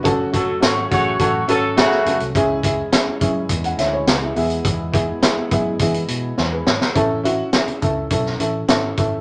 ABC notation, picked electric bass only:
X:1
M:4/4
L:1/16
Q:1/4=104
K:A
V:1 name="Picked electric bass" clef=bass
F,,,4 G,,,2 A,,,2 A,,,2 G,,,3 z F,,, =C,, | C,,4 z2 F,,2 E,,2 D,,2 C,,2 E,,2 | E,,4 z2 F,,2 E,2 B,,2 E,,2 G,,, z | A,,,4 z2 C,,2 B,,,2 A,,,2 G,,,2 G,,,2 |]